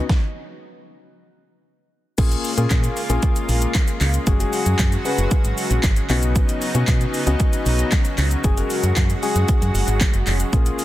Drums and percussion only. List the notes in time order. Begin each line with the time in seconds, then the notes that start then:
0.09 kick, snare
2.18 kick, closed hi-hat, crash, shaker
2.32 closed hi-hat, shaker
2.44 open hi-hat, shaker
2.58 closed hi-hat, shaker
2.70 kick, snare, clap, closed hi-hat, shaker
2.84 closed hi-hat, shaker
2.97 open hi-hat, shaker
3.10 closed hi-hat, shaker
3.22 kick, closed hi-hat, shaker
3.36 closed hi-hat, shaker
3.49 open hi-hat, shaker
3.62 closed hi-hat, shaker
3.75 kick, snare, clap, closed hi-hat, shaker
3.88 closed hi-hat, shaker
4.01 clap, open hi-hat, shaker
4.14 closed hi-hat, shaker
4.27 kick, closed hi-hat, shaker
4.40 closed hi-hat, shaker
4.53 open hi-hat, shaker
4.66 closed hi-hat, shaker
4.79 kick, snare, clap, closed hi-hat, shaker
4.92 closed hi-hat, shaker
5.05 open hi-hat, shaker
5.18 closed hi-hat, shaker
5.31 kick, closed hi-hat, shaker
5.45 closed hi-hat, shaker
5.58 open hi-hat, shaker
5.71 closed hi-hat, shaker
5.83 kick, snare, clap, closed hi-hat, shaker
5.96 closed hi-hat, shaker
6.10 clap, open hi-hat, shaker
6.23 closed hi-hat, shaker
6.36 kick, closed hi-hat, shaker
6.49 closed hi-hat, shaker
6.62 open hi-hat, shaker
6.75 closed hi-hat, shaker
6.88 kick, snare, clap, closed hi-hat, shaker
7.01 closed hi-hat, shaker
7.14 open hi-hat, shaker
7.27 closed hi-hat, shaker
7.40 kick, closed hi-hat, shaker
7.53 closed hi-hat, shaker
7.66 open hi-hat, shaker
7.79 closed hi-hat, shaker
7.92 kick, snare, clap, closed hi-hat, shaker
8.05 closed hi-hat, shaker
8.18 clap, open hi-hat, shaker
8.31 closed hi-hat, shaker
8.44 kick, closed hi-hat, shaker
8.57 closed hi-hat, shaker
8.70 open hi-hat, shaker
8.84 closed hi-hat, shaker
8.96 kick, snare, clap, closed hi-hat, shaker
9.10 closed hi-hat, shaker
9.23 open hi-hat, shaker
9.36 closed hi-hat, shaker
9.48 kick, closed hi-hat, shaker
9.62 closed hi-hat, shaker
9.75 open hi-hat, shaker
9.88 closed hi-hat, shaker
10.01 kick, snare, clap, closed hi-hat, shaker
10.14 closed hi-hat, shaker
10.27 clap, open hi-hat, shaker
10.40 closed hi-hat, shaker
10.53 kick, closed hi-hat, shaker
10.66 closed hi-hat, shaker
10.79 open hi-hat, shaker